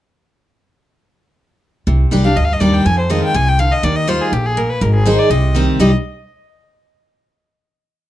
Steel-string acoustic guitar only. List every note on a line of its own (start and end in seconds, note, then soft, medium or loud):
1.87 2.34 C3 medium
2.11 2.24 D#3 medium
2.11 2.24 G3 medium
2.11 2.24 D4 medium
2.11 2.23 G4 loud
2.24 2.36 D4 medium
2.24 2.36 G4 medium
2.37 2.83 G2 medium
2.60 2.84 D#3 medium
2.60 2.84 G3 medium
2.60 2.84 D4 loud
2.60 2.85 G4 medium
2.86 3.32 F2 medium
3.10 3.33 D#3 medium
3.10 3.33 G#3 medium
3.10 3.33 C4 medium
3.10 3.34 F4 medium
3.34 3.58 C3 medium
3.59 3.82 D3 medium
3.83 4.06 D#3 medium
4.07 4.31 D#3 medium
4.07 4.31 G3 medium
4.07 4.32 D#4 medium
4.07 4.32 F4 loud
4.33 4.56 F2 medium
4.57 4.80 A#2 medium
4.81 5.28 G#2 medium
5.05 5.29 D#3 medium
5.05 5.29 G#3 medium
5.05 5.30 D#4 medium
5.05 5.30 G#4 loud
5.31 5.77 C3 medium
5.54 5.78 D#3 medium
5.54 5.78 G3 medium
5.54 5.79 C4 medium
5.54 5.79 G4 loud
5.80 5.90 C3 medium
5.80 5.90 D#3 medium
5.80 5.90 G3 loud
5.80 5.90 C4 medium
5.80 5.90 G4 medium